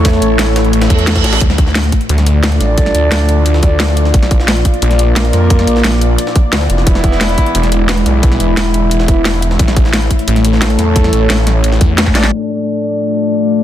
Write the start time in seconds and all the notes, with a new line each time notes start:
Already playing: E2 A3 E4 A4 C#5
0.05 kick, snare, closed hi-hat, open hi-hat
0.13 snare
0.22 A1, closed hi-hat
0.39 A1, snare, closed hi-hat
0.56 snare, closed hi-hat
0.65 closed hi-hat
0.73 closed hi-hat, reverse cymbal
0.82 snare, closed hi-hat
0.90 E2 A3 E4 A4, kick, closed hi-hat
0.99 closed hi-hat
1.07 snare, closed hi-hat
1.16 kick, snare, closed hi-hat
1.24 A1, snare, closed hi-hat
1.33 snare, closed hi-hat
1.41 D2 F4 D5, kick, closed hi-hat
1.50 snare
1.58 kick, closed hi-hat
1.67 snare
1.75 snare, closed hi-hat
1.84 closed hi-hat
1.92 kick, closed hi-hat
2.01 closed hi-hat
2.09 D2, closed hi-hat
2.18 snare, closed hi-hat
2.26 D4 A4 D5, closed hi-hat
2.43 snare, closed hi-hat
2.52 closed hi-hat
2.60 A1, snare, closed hi-hat
2.78 kick, closed hi-hat
2.86 snare
2.95 D2, closed hi-hat
3.12 D2, snare, closed hi-hat
3.29 closed hi-hat
3.46 closed hi-hat
3.54 snare
3.63 D2 D4 A4 D5, kick, closed hi-hat
3.80 snare, closed hi-hat, open hi-hat
3.88 snare
3.97 closed hi-hat
4.05 snare
4.14 A#1 A#3, kick, closed hi-hat
4.23 snare
4.31 kick, closed hi-hat
4.40 snare
4.48 snare, closed hi-hat
4.57 closed hi-hat
4.65 kick, closed hi-hat
4.74 closed hi-hat
4.82 A#1, closed hi-hat
4.91 snare, closed hi-hat
4.99 A#3 F4 A#4, closed hi-hat
5.16 snare, closed hi-hat
5.25 closed hi-hat
5.33 F2, snare, closed hi-hat
5.50 kick, closed hi-hat
5.59 snare
5.67 A#1, closed hi-hat
5.76 snare
5.84 A#1, snare, closed hi-hat
5.93 snare
6.01 closed hi-hat
6.18 closed hi-hat
6.27 snare
6.36 kick, closed hi-hat
6.53 D2, snare, closed hi-hat, open hi-hat
6.61 snare
6.70 F1 E3 B3 E4, closed hi-hat
6.78 snare
6.87 E1 G#3 E4, kick, closed hi-hat
6.95 snare
7.04 kick, closed hi-hat
7.12 snare
7.21 snare, closed hi-hat
7.29 closed hi-hat
7.38 kick, closed hi-hat
7.46 closed hi-hat
7.55 E1, closed hi-hat
7.63 snare, closed hi-hat
7.72 E3 B3 E4, closed hi-hat
7.89 snare, closed hi-hat
7.97 closed hi-hat
8.06 B1, snare, closed hi-hat
8.23 kick, closed hi-hat
8.32 snare
8.40 E1, closed hi-hat
8.57 E1, snare, closed hi-hat
8.74 closed hi-hat
8.91 closed hi-hat
9.00 snare
9.08 E1 E3 B3 E4, kick, closed hi-hat
9.25 snare, closed hi-hat, open hi-hat
9.34 snare
9.42 closed hi-hat
9.51 snare
9.59 A1 A3 C#5, kick, closed hi-hat
9.68 snare
9.77 kick, closed hi-hat
9.85 snare
9.94 snare, closed hi-hat
10.02 closed hi-hat
10.11 kick, closed hi-hat
10.19 closed hi-hat
10.28 A1, closed hi-hat
10.36 snare, closed hi-hat
10.45 A3 E4 A4, closed hi-hat
10.53 snare
10.62 snare, closed hi-hat
10.70 closed hi-hat
10.79 E2, snare, closed hi-hat
10.96 kick, closed hi-hat
11.04 snare
11.13 A1, closed hi-hat
11.30 A1, snare, closed hi-hat
11.47 snare, closed hi-hat
11.64 closed hi-hat
11.72 snare
11.81 E2, kick, closed hi-hat
11.98 snare, closed hi-hat
12.06 kick, snare
12.15 A1 D4 A4 D5, snare, closed hi-hat
12.24 snare
12.32 A3 D4 F4 A4 D5, closed hi-hat, downlifter
12.66 closed hi-hat
12.83 closed hi-hat
13.00 closed hi-hat
13.17 closed hi-hat
13.34 closed hi-hat
13.51 closed hi-hat